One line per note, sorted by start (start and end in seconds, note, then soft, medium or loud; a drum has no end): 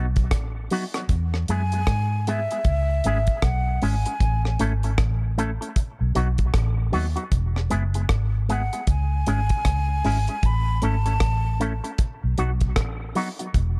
0.00 0.32 B1 medium
0.16 kick loud
0.16 closed hi-hat soft
0.31 0.67 A1 medium
0.31 kick loud
0.31 cross-stick medium
0.31 closed hi-hat medium
0.70 0.82 F#3 medium
0.70 0.83 B3 medium
0.70 0.83 D#4 medium
0.70 0.83 F#4 medium
0.70 open hi-hat medium
0.94 1.01 F#3 soft
0.94 1.01 B3 medium
0.94 1.01 D#4 medium
0.94 1.00 F#4 medium
0.94 cross-stick medium
0.94 closed hi-hat medium
1.09 1.45 E2 loud
1.09 kick loud
1.09 closed hi-hat medium
1.34 cross-stick medium
1.48 1.84 F#2 medium
1.48 1.60 G#3 medium
1.48 1.60 B3 medium
1.48 1.61 E4 medium
1.48 1.61 G#4 medium
1.48 2.29 G#5 loud
1.48 closed hi-hat medium
1.72 1.79 G#3 medium
1.72 1.79 B3 medium
1.72 1.79 E4 medium
1.72 1.79 G#4 medium
1.72 closed hi-hat soft
1.87 2.46 G#2 medium
1.87 kick loud
1.87 cross-stick loud
1.87 closed hi-hat medium
2.27 2.38 G#3 medium
2.27 2.38 B3 medium
2.27 2.39 E4 medium
2.27 2.39 G#4 medium
2.27 3.46 E5 medium
2.27 closed hi-hat medium
2.51 2.57 G#3 medium
2.51 2.57 B3 medium
2.51 2.57 E4 medium
2.51 2.56 G#4 medium
2.51 closed hi-hat soft
2.65 3.00 C#2 medium
2.65 kick loud
2.65 closed hi-hat medium
3.04 3.26 G#1 medium
3.04 3.16 G#3 medium
3.04 3.16 C#4 medium
3.04 3.17 E4 medium
3.04 3.17 G#4 medium
3.04 closed hi-hat medium
3.27 kick medium
3.27 closed hi-hat medium
3.42 3.78 B1 medium
3.42 3.84 F#5 medium
3.42 kick loud
3.42 cross-stick loud
3.42 closed hi-hat medium
3.82 4.04 G#1 medium
3.82 3.93 G#3 medium
3.82 3.93 C#4 medium
3.82 3.94 E4 medium
3.82 3.94 G#4 medium
3.82 4.60 G#5 medium
3.82 open hi-hat medium
4.05 4.12 G#3 soft
4.05 4.12 C#4 medium
4.05 4.12 E4 medium
4.05 4.12 G#4 medium
4.05 closed hi-hat medium
4.20 4.56 A1 loud
4.20 kick loud
4.20 closed hi-hat medium
4.45 cross-stick medium
4.59 4.95 G#1 medium
4.59 4.71 A3 medium
4.59 4.71 C#4 medium
4.59 4.72 E4 medium
4.59 4.72 A4 loud
4.59 closed hi-hat medium
4.83 4.90 A3 soft
4.83 4.90 C#4 medium
4.83 4.90 E4 medium
4.83 4.89 A4 medium
4.83 closed hi-hat soft
4.98 5.57 A1 medium
4.98 kick loud
4.98 cross-stick loud
4.98 closed hi-hat medium
5.38 5.49 A3 medium
5.38 5.49 C#4 medium
5.38 5.49 E4 medium
5.38 5.50 A4 medium
5.38 closed hi-hat medium
5.61 5.67 A3 soft
5.61 5.67 C#4 medium
5.61 5.67 E4 medium
5.61 5.67 A4 medium
5.61 closed hi-hat soft
5.76 kick loud
5.76 closed hi-hat medium
6.01 6.14 B1 medium
6.15 6.51 B1 medium
6.15 6.27 F#3 medium
6.15 6.27 B3 medium
6.15 6.27 D#4 medium
6.15 6.27 F#4 medium
6.15 closed hi-hat medium
6.38 kick medium
6.38 closed hi-hat soft
6.54 6.89 A1 loud
6.54 kick loud
6.54 cross-stick medium
6.54 closed hi-hat medium
6.92 7.15 D#2 medium
6.92 7.04 F#3 medium
6.92 7.04 B3 medium
6.92 7.05 D#4 medium
6.92 7.05 F#4 medium
6.92 open hi-hat medium
7.16 7.23 F#3 soft
7.16 7.22 B3 medium
7.16 7.22 D#4 medium
7.16 7.22 F#4 medium
7.16 closed hi-hat medium
7.32 7.67 E1 loud
7.32 kick loud
7.32 closed hi-hat medium
7.56 cross-stick medium
7.70 8.07 F#1 medium
7.70 7.82 G#3 medium
7.70 7.82 B3 medium
7.70 7.82 E4 medium
7.70 7.82 G#4 medium
7.70 closed hi-hat medium
7.94 8.01 G#3 soft
7.94 8.01 B3 medium
7.94 8.01 E4 medium
7.94 8.01 G#4 medium
7.94 closed hi-hat medium
8.09 8.69 G#1 medium
8.09 kick loud
8.09 cross-stick loud
8.09 closed hi-hat medium
8.49 8.60 G#3 medium
8.49 8.61 B3 medium
8.49 8.61 E4 medium
8.49 8.61 G#4 medium
8.49 8.86 F#5 medium
8.49 closed hi-hat medium
8.73 8.79 G#3 soft
8.73 8.79 B3 medium
8.73 8.79 E4 medium
8.73 8.79 G#4 medium
8.73 closed hi-hat soft
8.87 9.23 C#2 loud
8.87 10.47 G#5 loud
8.87 kick loud
8.87 closed hi-hat medium
9.27 9.48 G#1 medium
9.27 9.38 G#3 medium
9.27 9.38 C#4 medium
9.27 9.38 E4 medium
9.27 9.39 G#4 medium
9.27 closed hi-hat medium
9.49 kick loud
9.49 closed hi-hat medium
9.65 10.01 C#2 medium
9.65 kick loud
9.65 cross-stick medium
9.65 closed hi-hat loud
10.04 10.26 G#1 medium
10.04 10.16 G#3 medium
10.04 10.16 C#4 medium
10.04 10.16 E4 medium
10.04 10.16 G#4 medium
10.04 open hi-hat medium
10.28 10.35 G#3 soft
10.28 10.34 C#4 medium
10.28 10.34 E4 medium
10.28 10.34 G#4 medium
10.28 closed hi-hat soft
10.43 10.79 A1 loud
10.43 10.87 B5 medium
10.43 kick loud
10.43 closed hi-hat medium
10.82 11.18 G#1 medium
10.82 10.94 A3 medium
10.82 10.94 C#4 medium
10.82 10.94 E4 medium
10.82 10.94 A4 medium
10.82 12.00 A5 medium
10.82 closed hi-hat medium
11.06 11.12 A3 medium
11.06 11.12 C#4 medium
11.06 11.12 E4 medium
11.06 11.12 A4 medium
11.06 closed hi-hat soft
11.20 11.80 A1 medium
11.20 kick loud
11.20 cross-stick loud
11.20 closed hi-hat medium
11.60 11.71 A3 medium
11.60 11.72 C#4 medium
11.60 11.72 E4 medium
11.60 11.72 A4 medium
11.60 closed hi-hat medium
11.84 11.90 A3 soft
11.84 11.90 C#4 medium
11.84 11.90 E4 medium
11.84 11.89 A4 medium
11.84 closed hi-hat soft
11.98 kick loud
11.98 closed hi-hat medium
12.24 12.37 B1 medium
12.38 12.77 B1 medium
12.38 12.49 F#3 medium
12.38 12.49 B3 medium
12.38 12.50 D#4 medium
12.38 12.50 F#4 loud
12.38 closed hi-hat medium
12.61 kick loud
12.61 closed hi-hat medium
12.76 13.12 A1 medium
12.76 kick loud
12.76 cross-stick loud
12.76 closed hi-hat medium
13.15 13.27 F#3 medium
13.15 13.27 B3 medium
13.15 13.27 D#4 medium
13.15 13.28 F#4 medium
13.15 open hi-hat medium
13.39 13.46 F#3 medium
13.39 13.45 B3 soft
13.39 13.45 D#4 medium
13.39 13.45 F#4 medium
13.39 closed hi-hat medium
13.54 13.80 E1 loud
13.54 kick loud
13.54 closed hi-hat medium